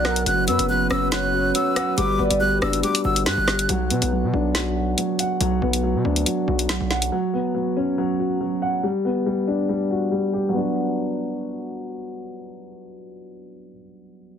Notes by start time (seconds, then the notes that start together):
Already playing: B1 F#3 B3 D4 F#4 D5 F#5 F#6
0.05 A#4 F#5, cross-stick, snare
0.16 closed hi-hat
0.26 F#1 F#3 C#4 B4 F#6, closed hi-hat
0.48 F#2 B3 B4 E6, closed hi-hat
0.59 F#1, closed hi-hat
0.69 F#3 F#6
0.91 F#1 C#4 E6, cross-stick
1.12 F#3 C#5 F#6, snare, closed hi-hat
1.33 F#4
1.55 F#3 E6, closed hi-hat
1.76 F#5, cross-stick, closed hi-hat
1.97 G1 G3 F#4 D6, closed hi-hat
2.19 G1 B3 D5
2.30 G1, closed hi-hat
2.40 G3 F#6
2.62 F#1 D4 E6, cross-stick
2.73 closed hi-hat
2.83 G3 D6, closed hi-hat
2.95 closed hi-hat
3.05 G1 F#4 E6
3.16 closed hi-hat
3.26 G2 G3 F#6, snare, closed hi-hat
3.38 G1
3.48 G4, cross-stick, snare
3.59 closed hi-hat
3.69 B1 F#3, closed hi-hat
3.90 B2 B3, closed hi-hat
4.02 B1, closed hi-hat
4.12 F#3
4.24 B2
4.34 B1 D4
4.55 F#3, snare, closed hi-hat
4.77 F#4
4.98 F#3, closed hi-hat
5.19 F#5, closed hi-hat
5.41 B1 F#3, closed hi-hat
5.62 B1 B3
5.73 closed hi-hat
5.83 F#3
5.95 B2
6.05 D2 D4
6.16 closed hi-hat
6.26 F#3, closed hi-hat
6.48 B1 F#4
6.59 closed hi-hat
6.69 F#3, snare, closed hi-hat
6.81 B1
6.91 F#5, snare
7.02 closed hi-hat
7.12 F#3
7.33 B3
7.55 F#3
7.77 C#4
7.98 F#3
8.19 F#4
8.41 F#3
8.62 F#5
8.83 G3
9.05 B3
9.26 G3
9.48 D4
9.69 G3
9.91 F#4
10.12 G3
10.33 G4
10.49 F#3
10.53 B3 D4
10.61 F#4